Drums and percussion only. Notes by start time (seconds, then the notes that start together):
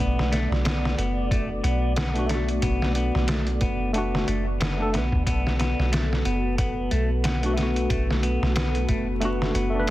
0.19 snare
0.33 snare, closed hi-hat
0.52 snare
0.65 snare, closed hi-hat
0.85 snare
0.98 closed hi-hat
1.31 kick, closed hi-hat
1.64 closed hi-hat
1.96 snare, closed hi-hat
2.16 closed hi-hat
2.29 snare, closed hi-hat
2.49 closed hi-hat
2.62 kick, closed hi-hat
2.82 snare
2.95 closed hi-hat
3.15 snare
3.28 snare, closed hi-hat
3.47 closed hi-hat
3.61 kick, closed hi-hat
3.94 closed hi-hat
4.15 snare
4.28 closed hi-hat
4.61 snare, closed hi-hat
4.94 snare, closed hi-hat
5.12 kick
5.27 kick, closed hi-hat
5.47 snare
5.60 snare, closed hi-hat
5.80 snare
5.93 snare, closed hi-hat
6.13 snare
6.25 closed hi-hat
6.58 kick, closed hi-hat
6.91 closed hi-hat
7.24 snare, closed hi-hat
7.43 closed hi-hat
7.58 snare, closed hi-hat
7.76 closed hi-hat
7.90 kick, closed hi-hat
8.10 snare
8.23 closed hi-hat
8.43 snare
8.56 snare, closed hi-hat
8.75 closed hi-hat
8.89 kick, closed hi-hat
9.22 closed hi-hat
9.42 snare
9.55 closed hi-hat